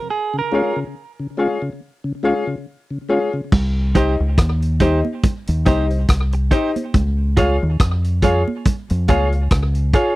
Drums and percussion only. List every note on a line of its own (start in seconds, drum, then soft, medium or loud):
3.52 kick loud
3.52 crash medium
3.52 low conga medium
3.95 kick medium
3.95 closed hi-hat medium
3.95 low conga medium
4.38 kick loud
4.38 cross-stick loud
4.38 closed hi-hat loud
4.62 closed hi-hat medium
4.80 kick medium
4.80 closed hi-hat medium
4.80 low conga medium
5.05 high conga medium
5.23 kick loud
5.23 closed hi-hat medium
5.23 low conga medium
5.47 closed hi-hat medium
5.66 kick loud
5.66 closed hi-hat medium
5.66 high conga medium
5.66 low conga medium
5.90 closed hi-hat soft
6.08 kick loud
6.08 cross-stick loud
6.08 closed hi-hat medium
6.32 closed hi-hat soft
6.51 kick medium
6.51 closed hi-hat medium
6.76 closed hi-hat medium
6.76 high conga medium
6.94 kick loud
6.94 closed hi-hat medium
6.94 low conga medium
7.37 kick medium
7.37 closed hi-hat medium
7.37 low conga medium
7.80 kick loud
7.80 cross-stick loud
7.80 closed hi-hat loud
8.04 closed hi-hat medium
8.22 kick medium
8.22 closed hi-hat medium
8.22 low conga medium
8.48 high conga medium
8.65 kick loud
8.65 closed hi-hat medium
8.65 low conga medium
8.90 closed hi-hat medium
9.08 kick medium
9.08 closed hi-hat medium
9.08 high conga medium
9.08 low conga medium
9.32 closed hi-hat soft
9.51 kick loud
9.51 cross-stick loud
9.51 closed hi-hat medium
9.75 closed hi-hat medium
9.94 kick loud
9.94 closed hi-hat medium